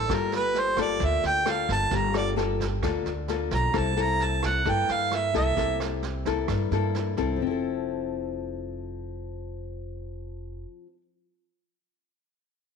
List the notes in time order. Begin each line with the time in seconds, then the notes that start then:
Already playing: A4
0.09 G1 G3 A#3 F4 A4, kick, cross-stick, snare
0.14 A#4
0.32 B4, snare
0.54 snare
0.59 C5
0.77 A#3 F4 A4, kick, cross-stick, snare
0.81 D5
1.00 D2 D3, kick, snare
1.04 E5
1.23 D2 G5, snare
1.45 A#3 F4 A4, cross-stick, snare
1.50 F5
1.69 G1 A5, kick, snare
1.91 G1 G3, kick, snare
1.95 A#5
2.13 A#3 F4 A4 D5, cross-stick, snare
2.36 A#3 F4 A4, snare
2.60 kick, snare
2.82 D2 D3 A#3 F4 A4, kick, cross-stick, snare
3.05 D2, snare
3.28 A#3 F4 A4, snare
3.51 B1 A#5, kick, snare
3.73 C2 C3 A#3 E4 A4, kick, cross-stick, snare
3.78 A5
3.96 A#3 E4 A4, snare
4.01 A#5
4.20 A5, snare
4.43 F#5, kick, cross-stick, snare
4.65 G2 A#3 E4 A4, kick, snare
4.70 G5
4.88 G2 F5, snare
5.11 E5, cross-stick, snare
5.34 C2 A#3 E4 A4 E5, kick, snare
5.56 C2 C3 A#3 E4 A4, kick, snare
5.80 cross-stick, snare
6.03 snare
6.25 A#3 E4 A4, kick, snare
6.48 G2, kick, cross-stick, snare
6.71 G2 A#3 E4 A4, snare
6.94 snare
7.17 C2 C4 E4 A4, kick, snare
7.36 F3
7.40 F1 C4
7.47 E4
7.51 A4